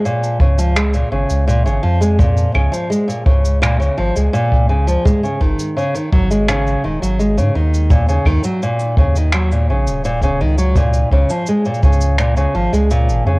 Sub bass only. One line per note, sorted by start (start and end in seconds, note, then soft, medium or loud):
0.40 1.04 C#2 medium
1.12 1.25 G#1 medium
1.30 1.68 C#2 medium
1.66 1.79 G#1 loud
1.84 2.47 F2 medium
2.55 2.68 C#2 loud
3.26 3.90 C#2 medium
3.99 4.11 G#1 medium
4.17 4.29 C#2 loud
4.52 4.97 C#2 medium
5.41 5.54 G#1 loud
6.12 6.76 G#1 medium
6.84 6.97 D#1 medium
7.02 7.39 G#1 medium
7.38 7.50 G#2 loud
7.56 8.19 D#2 medium
8.25 8.39 D#2 loud
8.97 9.71 D#2 medium
9.69 9.88 A#1 medium
9.87 10.42 D#1 medium
10.40 11.04 C#2 medium
11.11 11.25 C#2 loud
11.83 12.47 C#2 medium
12.55 12.68 G#1 medium
12.73 13.10 C#2 loud
13.09 13.21 G#1 loud
13.26 13.39 F2 medium